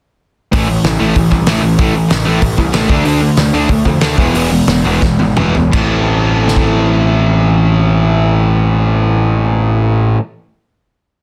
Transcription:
0.52 picked electric bass A1, distorted electric guitar A2 E3 A3, kick, open hi-hat
0.68 distorted electric guitar A2 E3
0.84 picked electric bass A1, distorted electric guitar A2 E3, snare, open hi-hat
0.99 picked electric bass A1, distorted electric guitar A2 E3 A3
1.15 picked electric bass A1, distorted electric guitar A2 E3, kick, open hi-hat
1.30 picked electric bass C2, distorted electric guitar A2 E3, kick
1.47 picked electric bass A1, distorted electric guitar A2 E3 A3, snare, open hi-hat
1.63 picked electric bass A1, distorted electric guitar A2 E3
1.79 picked electric bass A1, distorted electric guitar A2 E3 A3, kick, open hi-hat
1.95 distorted electric guitar A2 E3
2.10 picked electric bass A1, distorted electric guitar A2 E3, snare, open hi-hat
2.27 picked electric bass A1, distorted electric guitar A2 E3 A3
2.42 picked electric bass A1, distorted electric guitar A2 E3, kick, open hi-hat
2.58 picked electric bass C2, distorted electric guitar A2 E3, kick
2.73 picked electric bass A1, distorted electric guitar A2 E3 A3, snare, open hi-hat
2.89 picked electric bass D2, distorted electric guitar D3 A3 D4, kick
3.05 picked electric bass D2, distorted electric guitar D3 A3 D4, open hi-hat
3.21 distorted electric guitar D3 A3
3.37 picked electric bass D2, distorted electric guitar D3 A3, snare, open hi-hat
3.54 picked electric bass D2, distorted electric guitar D3 A3 D4
3.69 picked electric bass D2, distorted electric guitar D3 A3, kick, open hi-hat
3.85 picked electric bass F2, distorted electric guitar D3 A3, kick
4.01 picked electric bass D2, distorted electric guitar D3 A3 D4, snare, open hi-hat
4.17 picked electric bass E1, distorted electric guitar E2 B2 E3 G#3 B3, kick
4.34 picked electric bass E1, distorted electric guitar E2 B2 E3 G#3 B3, open hi-hat
4.51 distorted electric guitar E2 B2 E3 G#3
4.67 picked electric bass E1, distorted electric guitar E2 B2 E3 G#3, snare, open hi-hat
4.84 picked electric bass E1, distorted electric guitar E2 B2 E3 G#3 B3
5.02 picked electric bass E1, distorted electric guitar E2 B2 E3 G#3, kick, snare
5.19 picked electric bass G#1, distorted electric guitar E2 B2 E3 G#3, high tom
5.36 picked electric bass E1, distorted electric guitar E2 B2 E3 G#3 B3, mid tom
5.55 picked electric bass E1, distorted electric guitar E2 B2 E3 G#3, floor tom
5.72 picked electric bass A1, distorted electric guitar A2 E3 A3 C4 E4, kick, crash
5.76 distorted electric guitar A4
6.48 snare
6.56 kick

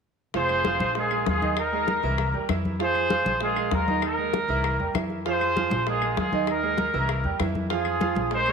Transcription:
0.34 upright bass F1, grand piano F3 F4 F5, trumpet section G#4 C5, high bongo, high conga
0.49 high conga, claves
0.65 grand piano F3 F4 F5, high bongo, high conga
0.80 upright bass A#1, high conga
0.95 grand piano G#3 G#4 A#4, trumpet section F4 G#4, high bongo, high conga
1.11 grand piano G#3 G#4 A#4, high conga, claves
1.27 upright bass D#2, trumpet section F4 G#4, high bongo, low bongo, high conga
1.42 grand piano D#3 D#4 D#5, high conga
1.57 trumpet section D#4 A#4, high bongo, high conga, claves
1.73 grand piano G#3 G#4 A#4, high conga
1.88 high bongo, high conga
2.02 upright bass C2, grand piano E3 E4 E5, high bongo, high conga
2.18 high bongo, high conga, claves
2.33 upright bass E2, grand piano G3 G4 A#4, high bongo, high conga
2.49 upright bass F2, grand piano E3 E4 E5, high bongo, low bongo, high conga, claves
2.65 high bongo, high conga
2.79 grand piano F3 F4 F5, trumpet section G#4 C5, high bongo, high conga
2.95 high conga, claves
3.10 grand piano F3 F4 F5, high bongo, high conga
3.25 upright bass A#1, high conga
3.40 grand piano G#3 G#4 A#4, trumpet section F4 G#4, high bongo, high conga
3.56 grand piano G#3 G#4 A#4, high conga, claves
3.71 upright bass D#2, trumpet section F4 A#4, high bongo, low bongo, high conga
3.88 grand piano D#3 D#4 D#5, high conga
4.02 trumpet section D#4 A#4, high bongo, high conga, claves
4.18 grand piano G#3 G#4 A#4, high conga
4.33 high bongo, high conga
4.48 upright bass C2, grand piano E3 E4 E5, high bongo, high conga
4.64 high bongo, high conga, claves
4.79 upright bass E2, grand piano G3 G4 A#4, high bongo, high conga
4.94 upright bass F2, grand piano E3 E4 E5, high bongo, low bongo, high conga, claves
5.10 high bongo
5.25 grand piano F3 F4 F5, trumpet section G#4 C5, high bongo, high conga
5.41 high conga, claves
5.56 grand piano F3 F4 F5, high bongo, high conga
5.70 upright bass A#1, high conga
5.87 grand piano G#3 G#4 A#4, trumpet section F4 G#4, high bongo, high conga
6.02 grand piano G#3 G#4 A#4, high conga, claves
6.17 upright bass D#2, trumpet section F4 G#4, high bongo, low bongo, high conga
6.32 grand piano D#3 D#4 D#5, high conga
6.47 trumpet section D#4 A#4, high bongo, high conga, claves
6.63 grand piano G#3 G#4 A#4, high conga
6.78 high bongo, high conga
6.93 upright bass C2, grand piano E3 E4 E5, high bongo, high conga
7.09 high bongo, high conga, claves
7.24 upright bass E2, grand piano G3 G4 A#4, high bongo, high conga
7.39 upright bass F2, grand piano E3 E4 E5, high bongo, low bongo, high conga, claves
7.55 high bongo, high conga
7.70 grand piano F3 F4 F5, trumpet section F4 G#4, high bongo
7.85 high conga, claves
8.01 grand piano F3 F4 F5, high bongo, high conga
8.15 upright bass A#1, high conga
8.31 grand piano G#3 G#4 A#4, trumpet section G#4 C5, high bongo, high conga
8.46 grand piano G#3 G#4 A#4, trumpet section A#4 C#5, high conga, claves

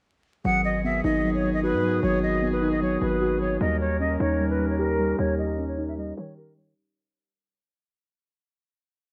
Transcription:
0.44 808-style bass G#1, woodwind section D#3 B3 F#4 G#4, synth keys F#3, flute F#5
0.65 synth keys F#3, flute D#5
0.84 synth keys B3, flute E5
1.04 808-style bass G#1, synth keys D#4, flute D#5
1.24 synth keys F#3
1.34 flute C#5
1.43 synth keys F#3
1.53 flute D#5
1.63 synth keys F#4, flute B4
1.73 808-style bass G#2
1.83 synth keys F#3
2.03 808-style bass G#1, synth keys F#3, flute C#5
2.23 synth keys F#3, flute D#5
2.42 synth keys B3
2.52 flute B4
2.62 synth keys D#4
2.72 flute D#5
2.82 synth keys F#3, flute C#5
3.02 808-style bass G#1, synth keys F#3, flute B4
3.21 synth keys F#4
3.41 synth keys F#3, flute C#5
3.61 808-style bass D#2, woodwind section D#3 C#4 G4 A#4, synth keys G3, flute D#5
3.80 synth keys G3, flute C#5
4.00 synth keys C#4, flute D#5
4.20 808-style bass D#2, synth keys D#4, flute C#5
4.40 synth keys G3
4.50 flute B4
4.59 synth keys G3
4.69 flute C#5
4.79 synth keys G4, flute A#4
4.99 synth keys G3
5.18 808-style bass D#2, synth keys G3, flute C#5
5.38 synth keys G3, flute D#5
5.58 synth keys C#4
5.68 flute C#5
5.78 synth keys D#4
5.88 flute E5
5.98 synth keys G3, flute D#5
6.17 808-style bass D#3, synth keys G3, flute C#5
6.37 synth keys G4, flute A#4
6.57 synth keys G3, flute C#5

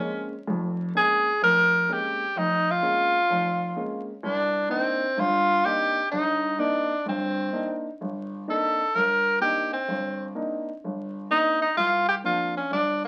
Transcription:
Already playing: tenor saxophone C#4
0.00 grand piano G#3 A#3 C4 C#4
0.47 grand piano F1 F2
0.95 grand piano G#3 A#3 C4 C#4, tenor saxophone G#4
1.42 grand piano F1, tenor saxophone A#4
1.88 grand piano G#3 A#3 C4 C#4
1.92 tenor saxophone G4
2.36 grand piano F1, tenor saxophone D#4
2.71 tenor saxophone F4
2.83 grand piano G#3 A#3 C4 C#4
3.30 grand piano F1
3.76 grand piano G#3 A#3 C4 C#4
4.22 grand piano C2, tenor saxophone D4
4.69 grand piano A#3 C4 D4 D#4, tenor saxophone C4
5.17 grand piano G1 G2, tenor saxophone F4
5.65 grand piano A#3 C4 D4 D#4, tenor saxophone G4
6.11 grand piano G1 G2, tenor saxophone D#4
6.59 grand piano A#3 C4 D4 D#4, tenor saxophone D4
7.06 grand piano G1 G2, tenor saxophone C4
7.53 grand piano A#3 C4 D4 D#4
8.01 grand piano G1
8.48 grand piano A#3 C4 D4 D#4, tenor saxophone A4
8.95 grand piano G1, tenor saxophone A#4
9.40 grand piano A#3 C4 D4 D#4, tenor saxophone G4
9.73 tenor saxophone C4
9.88 grand piano G1
10.35 grand piano A#3 C4 D4 D#4
10.84 grand piano G1
11.30 grand piano A#3 C4 D4 D#4, tenor saxophone D#4
11.62 tenor saxophone D#4
11.77 grand piano C2, tenor saxophone F4
12.08 tenor saxophone G4
12.24 grand piano F3 A#3 C4 D4, tenor saxophone F4
12.57 tenor saxophone C#4
12.71 grand piano G1, tenor saxophone D4

